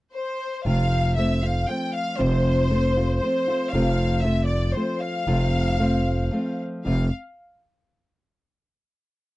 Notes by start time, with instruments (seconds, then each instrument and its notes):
0.14 violin section C5
0.65 fm bass F1, nylon-string guitar F2 C3 F3 A3 C4 F4, violin section F5
1.17 nylon-string guitar F3 A3 C4 F4, violin section E5
1.42 nylon-string guitar F3 A3 C4 F4, violin section F5
1.68 nylon-string guitar F3 A3 C4 F4, violin section G5
1.94 violin section F5
2.18 fm bass F1, nylon-string guitar F2 C3 F3 A3 C4 F4, violin section C5
2.70 nylon-string guitar F3 A3 C4 F4
2.97 nylon-string guitar F3 A3 C4 F4
3.18 violin section C5
3.22 nylon-string guitar F3 A3 C4 F4
3.48 nylon-string guitar F3 A3 C4 F4
3.69 violin section F5
3.73 fm bass F1, nylon-string guitar F2 C3 F3 A3 C4 F4
4.20 nylon-string guitar F3 A3, violin section E5
4.25 nylon-string guitar C4 F4
4.46 violin section D5
4.73 nylon-string guitar F3 A3 C4, violin section C5
4.77 nylon-string guitar F4
5.00 violin section F5
5.27 fm bass F1, nylon-string guitar F2 C3 F3 A3 C4 F4
5.79 nylon-string guitar F3 A3 C4 F4
6.31 nylon-string guitar F3 A3 C4 F4
6.85 fm bass F1, nylon-string guitar F2 C3 F3 A3 C4 F4, violin section F5